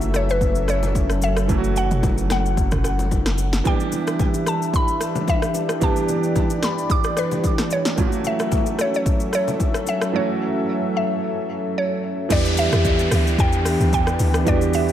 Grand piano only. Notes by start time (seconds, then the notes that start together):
Already playing: E3 F#3 A3 C#4 F#4
1.48 E3 F#3 A3 C#4 E4
1.58 F#4
3.64 E3 G3 B3 D4 G4
5.80 E3 G3 B3 D4 G4
7.96 E3 F#3 A3 C#4 F4
8.07 F#4
10.12 E3 F#3 A3 C#4 F#4
12.29 E3 G3 B3 D4
12.33 G4
14.45 E3 G3 B3 D4 F#4
14.56 G4